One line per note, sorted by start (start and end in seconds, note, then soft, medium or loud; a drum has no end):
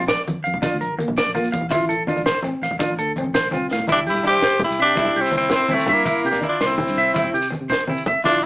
0.00 0.21 A#1 medium
0.08 0.21 D5 medium
0.08 snare medium
0.08 closed hi-hat medium
0.08 shekere medium
0.18 low conga soft
0.27 0.34 F2 medium
0.27 closed hi-hat medium
0.27 high conga medium
0.44 0.55 F2 medium
0.44 0.57 F5 medium
0.44 closed hi-hat soft
0.54 0.62 D2 medium
0.54 low conga medium
0.62 0.70 A#1 loud
0.62 0.81 D4 medium
0.62 0.76 F4 medium
0.62 kick medium
0.62 closed hi-hat medium
0.62 high conga medium
0.62 shekere medium
0.73 0.80 D2 medium
0.81 0.88 A#1 medium
0.81 0.94 A#4 medium
0.81 closed hi-hat soft
0.90 1.04 G1 medium
0.98 1.17 A#3 medium
0.98 closed hi-hat medium
0.98 high conga medium
1.08 1.15 A#1 medium
1.08 low conga medium
1.17 1.30 D5 medium
1.17 snare medium
1.17 closed hi-hat medium
1.17 shekere loud
1.27 1.48 A#1 medium
1.35 1.54 A#3 medium
1.35 1.48 F4 medium
1.35 closed hi-hat medium
1.35 high conga medium
1.44 shekere soft
1.52 1.73 E2 medium
1.52 1.66 F5 medium
1.52 kick medium
1.52 closed hi-hat medium
1.61 low conga medium
1.70 2.06 A1 medium
1.70 1.89 E4 medium
1.70 1.84 F4 medium
1.70 kick medium
1.70 closed hi-hat medium
1.70 high conga medium
1.70 shekere medium
1.80 shekere soft
1.89 2.02 A4 medium
1.89 closed hi-hat medium
1.99 low conga soft
2.07 2.27 D4 medium
2.07 2.21 F4 medium
2.07 closed hi-hat soft
2.07 high conga medium
2.16 2.31 A1 medium
2.16 low conga medium
2.16 shekere soft
2.26 2.39 C5 medium
2.26 snare medium
2.26 closed hi-hat medium
2.26 shekere loud
2.34 low conga soft
2.43 2.51 A1 medium
2.43 2.63 C4 medium
2.43 closed hi-hat soft
2.43 high conga medium
2.43 shekere soft
2.62 2.69 A1 medium
2.62 2.76 F5 medium
2.62 snare soft
2.62 closed hi-hat soft
2.71 2.78 A1 medium
2.71 low conga medium
2.79 2.87 A1 loud
2.79 2.98 D4 medium
2.79 2.93 F4 medium
2.79 kick medium
2.79 closed hi-hat medium
2.79 high conga medium
2.79 shekere medium
2.90 2.97 A1 medium
2.98 3.13 D2 medium
2.98 3.12 A4 medium
2.98 closed hi-hat medium
3.16 3.24 A1 loud
3.16 3.36 C4 medium
3.16 closed hi-hat medium
3.16 high conga medium
3.24 3.47 A1 medium
3.24 low conga medium
3.34 3.47 C5 medium
3.34 snare medium
3.34 closed hi-hat medium
3.34 shekere loud
3.45 shekere soft
3.51 3.67 C2 medium
3.51 3.71 C4 medium
3.51 3.66 F4 medium
3.51 closed hi-hat soft
3.51 high conga medium
3.51 shekere soft
3.60 low conga soft
3.70 3.86 A2 medium
3.70 3.85 F5 medium
3.70 snare soft
3.70 shekere soft
3.79 low conga medium
3.87 4.09 C2 medium
3.87 4.07 E4 medium
3.87 4.02 E4 medium
3.87 3.99 G4 medium
3.87 kick medium
3.87 closed hi-hat medium
3.87 high conga medium
3.87 shekere medium
3.92 4.00 D4 medium
4.06 4.44 G2 medium
4.06 4.25 E4 medium
4.06 4.20 G4 medium
4.06 4.25 G4 medium
4.06 closed hi-hat medium
4.06 shekere soft
4.15 low conga medium
4.15 shekere medium
4.23 4.43 D4 medium
4.23 4.38 E4 medium
4.23 4.60 G4 loud
4.23 closed hi-hat soft
4.23 high conga medium
4.23 shekere soft
4.29 4.61 C5 medium
4.29 low conga soft
4.42 4.65 C2 medium
4.42 4.56 C5 medium
4.42 snare medium
4.42 closed hi-hat medium
4.42 shekere medium
4.54 shekere soft
4.59 closed hi-hat soft
4.59 high conga medium
4.59 low conga medium
4.64 4.80 E4 medium
4.64 4.80 G4 medium
4.70 4.77 C2 medium
4.70 shekere medium
4.78 4.93 C3 medium
4.78 4.93 E5 medium
4.78 closed hi-hat soft
4.78 low conga soft
4.82 5.23 D4 medium
4.82 5.22 G4 medium
4.95 5.04 C2 medium
4.95 5.16 E4 medium
4.95 5.11 E4 medium
4.95 kick medium
4.95 closed hi-hat medium
4.95 high conga medium
4.95 low conga soft
4.95 shekere medium
5.05 low conga medium
5.15 5.30 C2 medium
5.15 5.29 G4 medium
5.15 closed hi-hat soft
5.21 5.37 C4 medium
5.21 5.37 E4 medium
5.21 low conga soft
5.26 shekere medium
5.32 5.48 C2 medium
5.32 5.51 C4 medium
5.32 closed hi-hat soft
5.32 high conga medium
5.37 5.53 C4 medium
5.37 5.54 E4 medium
5.50 5.66 C5 medium
5.50 snare medium
5.50 closed hi-hat medium
5.50 low conga medium
5.50 shekere medium
5.55 5.75 C4 medium
5.55 5.77 E4 medium
5.69 5.77 C2 medium
5.69 5.89 C4 medium
5.69 5.84 E4 medium
5.69 closed hi-hat soft
5.69 high conga medium
5.74 5.94 A3 medium
5.74 5.94 C4 medium
5.79 shekere medium
5.86 6.03 G2 medium
5.86 6.02 E5 medium
5.86 kick medium
5.86 closed hi-hat soft
5.86 low conga medium
5.93 6.27 A#3 medium
5.93 6.27 E4 medium
6.05 6.13 C2 medium
6.05 6.25 E4 medium
6.05 6.20 E4 medium
6.05 kick medium
6.05 closed hi-hat medium
6.05 high conga medium
6.05 shekere medium
6.15 shekere soft
6.25 6.39 C3 medium
6.25 6.39 G4 medium
6.25 closed hi-hat medium
6.25 shekere soft
6.29 6.45 A#3 medium
6.29 6.44 D4 medium
6.29 low conga medium
6.34 shekere medium
6.41 6.60 D4 medium
6.41 6.56 E4 medium
6.41 closed hi-hat soft
6.41 high conga medium
6.41 shekere soft
6.48 6.63 D4 medium
6.48 6.63 F4 medium
6.48 low conga soft
6.61 6.82 C2 medium
6.61 6.74 C5 medium
6.61 snare medium
6.61 closed hi-hat medium
6.61 shekere medium
6.65 7.33 C4 medium
6.65 7.32 E4 medium
6.70 shekere soft
6.78 6.97 C4 medium
6.78 closed hi-hat soft
6.78 high conga medium
6.78 low conga medium
6.87 6.96 G2 medium
6.87 shekere medium
6.96 7.11 C2 medium
6.96 7.11 E5 medium
6.96 closed hi-hat soft
6.96 low conga soft
7.14 7.30 C2 medium
7.14 7.33 E4 medium
7.14 7.29 E4 medium
7.14 kick medium
7.14 closed hi-hat medium
7.14 high conga medium
7.14 low conga soft
7.14 shekere medium
7.24 low conga medium
7.33 7.55 C3 medium
7.33 7.47 G4 medium
7.33 closed hi-hat soft
7.42 low conga soft
7.42 shekere medium
7.50 muted clean electric guitar stroke medium
7.50 closed hi-hat soft
7.50 high conga medium
7.61 7.75 C3 medium
7.69 7.83 C5 medium
7.69 snare medium
7.69 closed hi-hat medium
7.69 low conga medium
7.69 shekere medium
7.88 8.17 C3 medium
7.88 8.06 C4 medium
7.88 8.02 E4 medium
7.88 closed hi-hat soft
7.88 high conga medium
7.97 shekere medium
8.06 8.20 E5 medium
8.06 kick medium
8.06 closed hi-hat soft
8.06 low conga medium
8.24 8.45 A#1 medium
8.24 8.45 D4 loud
8.24 8.43 E4 medium
8.24 8.38 F4 medium
8.24 8.44 F4 medium
8.24 kick medium
8.24 closed hi-hat medium
8.24 high conga medium
8.24 shekere medium
8.36 shekere soft